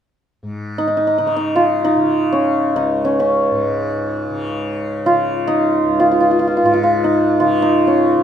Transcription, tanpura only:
0, 0, Header, 1, 2, 480
1, 0, Start_track
1, 0, Tempo, 500000
1, 7902, End_track
2, 0, Start_track
2, 0, Title_t, "Tanpura"
2, 0, Program_c, 0, 104
2, 410, Note_on_c, 0, 44, 44
2, 1142, Note_on_c, 0, 49, 46
2, 1889, Note_off_c, 0, 49, 0
2, 1889, Note_on_c, 0, 49, 51
2, 2632, Note_on_c, 0, 37, 44
2, 3367, Note_off_c, 0, 44, 0
2, 3371, Note_on_c, 0, 44, 45
2, 4122, Note_off_c, 0, 49, 0
2, 4122, Note_on_c, 0, 49, 45
2, 4857, Note_off_c, 0, 49, 0
2, 4857, Note_on_c, 0, 49, 47
2, 5602, Note_off_c, 0, 37, 0
2, 5606, Note_on_c, 0, 37, 44
2, 6362, Note_off_c, 0, 44, 0
2, 6366, Note_on_c, 0, 44, 50
2, 7111, Note_off_c, 0, 49, 0
2, 7111, Note_on_c, 0, 49, 54
2, 7848, Note_off_c, 0, 49, 0
2, 7848, Note_on_c, 0, 49, 47
2, 7902, Note_off_c, 0, 37, 0
2, 7902, Note_off_c, 0, 44, 0
2, 7902, Note_off_c, 0, 49, 0
2, 7902, End_track
0, 0, End_of_file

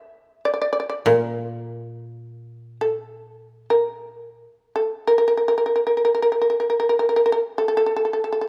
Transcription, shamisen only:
0, 0, Header, 1, 2, 480
1, 0, Start_track
1, 0, Tempo, 500000
1, 8143, End_track
2, 0, Start_track
2, 0, Title_t, "Shamisen"
2, 0, Program_c, 0, 106
2, 0, Note_on_c, 0, 76, 68
2, 384, Note_off_c, 0, 76, 0
2, 434, Note_on_c, 0, 74, 55
2, 504, Note_off_c, 0, 74, 0
2, 514, Note_on_c, 0, 74, 41
2, 579, Note_off_c, 0, 74, 0
2, 591, Note_on_c, 0, 74, 49
2, 671, Note_off_c, 0, 74, 0
2, 697, Note_on_c, 0, 74, 43
2, 754, Note_off_c, 0, 74, 0
2, 766, Note_on_c, 0, 74, 46
2, 847, Note_off_c, 0, 74, 0
2, 859, Note_on_c, 0, 74, 43
2, 939, Note_off_c, 0, 74, 0
2, 1026, Note_on_c, 0, 70, 53
2, 2655, Note_off_c, 0, 70, 0
2, 2699, Note_on_c, 0, 69, 49
2, 3505, Note_off_c, 0, 69, 0
2, 3554, Note_on_c, 0, 70, 47
2, 4538, Note_off_c, 0, 70, 0
2, 4565, Note_on_c, 0, 69, 44
2, 4838, Note_off_c, 0, 69, 0
2, 4872, Note_on_c, 0, 70, 57
2, 4951, Note_off_c, 0, 70, 0
2, 4973, Note_on_c, 0, 70, 37
2, 5048, Note_off_c, 0, 70, 0
2, 5066, Note_on_c, 0, 70, 41
2, 5140, Note_off_c, 0, 70, 0
2, 5159, Note_on_c, 0, 70, 34
2, 5232, Note_off_c, 0, 70, 0
2, 5262, Note_on_c, 0, 70, 41
2, 5329, Note_off_c, 0, 70, 0
2, 5354, Note_on_c, 0, 70, 34
2, 5420, Note_off_c, 0, 70, 0
2, 5433, Note_on_c, 0, 70, 39
2, 5505, Note_off_c, 0, 70, 0
2, 5526, Note_on_c, 0, 70, 31
2, 5596, Note_off_c, 0, 70, 0
2, 5632, Note_on_c, 0, 70, 36
2, 5695, Note_off_c, 0, 70, 0
2, 5732, Note_on_c, 0, 70, 30
2, 5790, Note_off_c, 0, 70, 0
2, 5806, Note_on_c, 0, 70, 39
2, 5871, Note_off_c, 0, 70, 0
2, 5900, Note_on_c, 0, 70, 33
2, 5963, Note_off_c, 0, 70, 0
2, 5975, Note_on_c, 0, 70, 41
2, 6045, Note_off_c, 0, 70, 0
2, 6066, Note_on_c, 0, 70, 31
2, 6135, Note_off_c, 0, 70, 0
2, 6159, Note_on_c, 0, 70, 32
2, 6225, Note_off_c, 0, 70, 0
2, 6239, Note_on_c, 0, 70, 30
2, 6309, Note_off_c, 0, 70, 0
2, 6335, Note_on_c, 0, 70, 34
2, 6402, Note_off_c, 0, 70, 0
2, 6430, Note_on_c, 0, 70, 30
2, 6494, Note_off_c, 0, 70, 0
2, 6525, Note_on_c, 0, 70, 36
2, 6586, Note_off_c, 0, 70, 0
2, 6617, Note_on_c, 0, 70, 34
2, 6676, Note_off_c, 0, 70, 0
2, 6713, Note_on_c, 0, 70, 41
2, 6769, Note_off_c, 0, 70, 0
2, 6806, Note_on_c, 0, 70, 33
2, 6860, Note_off_c, 0, 70, 0
2, 6877, Note_on_c, 0, 70, 39
2, 6938, Note_off_c, 0, 70, 0
2, 6967, Note_on_c, 0, 70, 37
2, 7019, Note_off_c, 0, 70, 0
2, 7030, Note_on_c, 0, 70, 43
2, 7103, Note_off_c, 0, 70, 0
2, 7278, Note_on_c, 0, 69, 48
2, 7346, Note_off_c, 0, 69, 0
2, 7375, Note_on_c, 0, 69, 35
2, 7438, Note_off_c, 0, 69, 0
2, 7460, Note_on_c, 0, 69, 39
2, 7525, Note_off_c, 0, 69, 0
2, 7550, Note_on_c, 0, 69, 33
2, 7614, Note_off_c, 0, 69, 0
2, 7646, Note_on_c, 0, 69, 34
2, 7707, Note_off_c, 0, 69, 0
2, 7727, Note_on_c, 0, 69, 29
2, 7791, Note_off_c, 0, 69, 0
2, 7807, Note_on_c, 0, 69, 34
2, 7875, Note_off_c, 0, 69, 0
2, 7911, Note_on_c, 0, 69, 30
2, 7972, Note_off_c, 0, 69, 0
2, 7992, Note_on_c, 0, 69, 34
2, 8056, Note_off_c, 0, 69, 0
2, 8077, Note_on_c, 0, 69, 32
2, 8125, Note_off_c, 0, 69, 0
2, 8143, End_track
0, 0, End_of_file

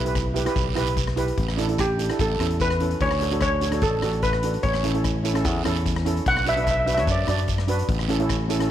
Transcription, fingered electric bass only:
0, 0, Header, 1, 2, 480
1, 0, Start_track
1, 0, Tempo, 407056
1, 1631, Time_signature, 4, 2, 24, 8
1, 10270, End_track
2, 0, Start_track
2, 0, Title_t, "Fingered electric bass"
2, 0, Program_c, 0, 33
2, 0, Note_on_c, 0, 35, 84
2, 547, Note_off_c, 0, 35, 0
2, 659, Note_on_c, 0, 35, 88
2, 874, Note_off_c, 0, 35, 0
2, 907, Note_on_c, 0, 35, 80
2, 1540, Note_off_c, 0, 35, 0
2, 1625, Note_on_c, 0, 33, 81
2, 2469, Note_off_c, 0, 33, 0
2, 2588, Note_on_c, 0, 33, 85
2, 2800, Note_off_c, 0, 33, 0
2, 2823, Note_on_c, 0, 40, 78
2, 3458, Note_off_c, 0, 40, 0
2, 3541, Note_on_c, 0, 38, 86
2, 4503, Note_on_c, 0, 33, 81
2, 4521, Note_off_c, 0, 38, 0
2, 4717, Note_off_c, 0, 33, 0
2, 4747, Note_on_c, 0, 33, 93
2, 5380, Note_off_c, 0, 33, 0
2, 5467, Note_on_c, 0, 33, 88
2, 6423, Note_off_c, 0, 33, 0
2, 6423, Note_on_c, 0, 40, 99
2, 6637, Note_off_c, 0, 40, 0
2, 6676, Note_on_c, 0, 40, 82
2, 7304, Note_off_c, 0, 40, 0
2, 7383, Note_on_c, 0, 35, 88
2, 8340, Note_off_c, 0, 35, 0
2, 8340, Note_on_c, 0, 42, 91
2, 8554, Note_off_c, 0, 42, 0
2, 8582, Note_on_c, 0, 42, 91
2, 9215, Note_off_c, 0, 42, 0
2, 9299, Note_on_c, 0, 33, 87
2, 10259, Note_off_c, 0, 33, 0
2, 10270, End_track
0, 0, End_of_file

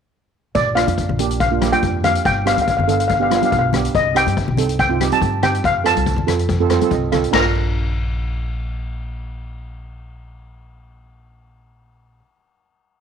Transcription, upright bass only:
0, 0, Header, 1, 2, 480
1, 0, Start_track
1, 0, Key_signature, -2, "major"
1, 0, Tempo, 424328
1, 626, Time_signature, 4, 2, 24, 8
1, 14709, End_track
2, 0, Start_track
2, 0, Title_t, "Upright bass"
2, 0, Program_c, 0, 32
2, 620, Note_on_c, 0, 34, 87
2, 925, Note_off_c, 0, 34, 0
2, 984, Note_on_c, 0, 41, 74
2, 1233, Note_on_c, 0, 34, 87
2, 1250, Note_off_c, 0, 41, 0
2, 1921, Note_off_c, 0, 34, 0
2, 2061, Note_on_c, 0, 41, 84
2, 2459, Note_off_c, 0, 41, 0
2, 2547, Note_on_c, 0, 31, 90
2, 2849, Note_off_c, 0, 31, 0
2, 2904, Note_on_c, 0, 38, 67
2, 3147, Note_on_c, 0, 31, 80
2, 3164, Note_off_c, 0, 38, 0
2, 3835, Note_off_c, 0, 31, 0
2, 3983, Note_on_c, 0, 35, 85
2, 4378, Note_off_c, 0, 35, 0
2, 4463, Note_on_c, 0, 36, 88
2, 4763, Note_off_c, 0, 36, 0
2, 4823, Note_on_c, 0, 43, 72
2, 5067, Note_on_c, 0, 36, 84
2, 5084, Note_off_c, 0, 43, 0
2, 5751, Note_off_c, 0, 36, 0
2, 5895, Note_on_c, 0, 43, 87
2, 6290, Note_off_c, 0, 43, 0
2, 6378, Note_on_c, 0, 41, 81
2, 6677, Note_off_c, 0, 41, 0
2, 6735, Note_on_c, 0, 36, 82
2, 6971, Note_on_c, 0, 41, 89
2, 6988, Note_off_c, 0, 36, 0
2, 7659, Note_off_c, 0, 41, 0
2, 7812, Note_on_c, 0, 36, 86
2, 8206, Note_off_c, 0, 36, 0
2, 8292, Note_on_c, 0, 34, 89
2, 13786, Note_off_c, 0, 34, 0
2, 14709, End_track
0, 0, End_of_file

